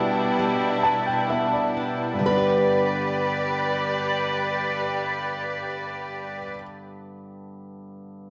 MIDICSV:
0, 0, Header, 1, 5, 480
1, 0, Start_track
1, 0, Key_signature, 1, "major"
1, 0, Tempo, 902256
1, 688, Tempo, 963082
1, 1164, Time_signature, 4, 2, 24, 8
1, 4180, End_track
2, 0, Start_track
2, 0, Title_t, "Nylon-string guitar"
2, 0, Program_c, 0, 24
2, 1169, Note_on_c, 0, 71, 56
2, 3283, Note_off_c, 0, 71, 0
2, 4180, End_track
3, 0, Start_track
3, 0, Title_t, "Steel-string acoustic guitar"
3, 0, Program_c, 1, 25
3, 0, Note_on_c, 1, 47, 57
3, 0, Note_on_c, 1, 62, 42
3, 0, Note_on_c, 1, 64, 39
3, 0, Note_on_c, 1, 71, 49
3, 209, Note_on_c, 1, 55, 47
3, 447, Note_off_c, 1, 71, 0
3, 449, Note_on_c, 1, 71, 43
3, 685, Note_off_c, 1, 64, 0
3, 691, Note_on_c, 1, 64, 37
3, 922, Note_off_c, 1, 62, 0
3, 924, Note_on_c, 1, 62, 36
3, 1133, Note_off_c, 1, 55, 0
3, 1135, Note_on_c, 1, 55, 49
3, 1167, Note_off_c, 1, 47, 0
3, 1169, Note_off_c, 1, 62, 0
3, 1171, Note_on_c, 1, 62, 45
3, 1199, Note_off_c, 1, 64, 0
3, 1201, Note_on_c, 1, 67, 47
3, 1227, Note_off_c, 1, 71, 0
3, 1229, Note_on_c, 1, 71, 52
3, 3268, Note_off_c, 1, 55, 0
3, 3305, Note_off_c, 1, 62, 0
3, 3335, Note_off_c, 1, 67, 0
3, 3362, Note_off_c, 1, 71, 0
3, 4180, End_track
4, 0, Start_track
4, 0, Title_t, "String section"
4, 0, Program_c, 2, 48
4, 0, Note_on_c, 2, 47, 57
4, 0, Note_on_c, 2, 55, 50
4, 0, Note_on_c, 2, 62, 57
4, 0, Note_on_c, 2, 64, 59
4, 1148, Note_off_c, 2, 62, 0
4, 1149, Note_off_c, 2, 47, 0
4, 1149, Note_off_c, 2, 55, 0
4, 1149, Note_off_c, 2, 64, 0
4, 1164, Note_on_c, 2, 55, 44
4, 1165, Note_on_c, 2, 67, 40
4, 1167, Note_on_c, 2, 74, 48
4, 1170, Note_on_c, 2, 71, 43
4, 3277, Note_off_c, 2, 55, 0
4, 3279, Note_off_c, 2, 67, 0
4, 3281, Note_off_c, 2, 74, 0
4, 3284, Note_off_c, 2, 71, 0
4, 4180, End_track
5, 0, Start_track
5, 0, Title_t, "Upright piano"
5, 0, Program_c, 3, 0
5, 0, Control_c, 3, 64, 127
5, 0, Note_on_c, 3, 47, 50
5, 0, Note_on_c, 3, 55, 42
5, 0, Note_on_c, 3, 59, 47
5, 443, Note_on_c, 3, 81, 46
5, 556, Note_off_c, 3, 81, 0
5, 564, Note_on_c, 3, 79, 40
5, 667, Note_off_c, 3, 59, 0
5, 679, Note_off_c, 3, 79, 0
5, 690, Note_on_c, 3, 59, 36
5, 692, Note_on_c, 3, 76, 46
5, 799, Note_off_c, 3, 76, 0
5, 804, Note_on_c, 3, 74, 39
5, 906, Note_off_c, 3, 55, 0
5, 1110, Note_on_c, 3, 43, 35
5, 1138, Note_on_c, 3, 50, 29
5, 1144, Note_off_c, 3, 47, 0
5, 1144, Note_off_c, 3, 74, 0
5, 1151, Note_off_c, 3, 59, 0
5, 1165, Note_on_c, 3, 59, 34
5, 1170, Control_c, 3, 64, 0
5, 1194, Note_on_c, 3, 62, 32
5, 1223, Note_on_c, 3, 67, 37
5, 1258, Control_c, 3, 64, 127
5, 3223, Note_off_c, 3, 43, 0
5, 3252, Note_off_c, 3, 50, 0
5, 3279, Note_off_c, 3, 59, 0
5, 3308, Note_off_c, 3, 62, 0
5, 3336, Note_off_c, 3, 67, 0
5, 4180, End_track
0, 0, End_of_file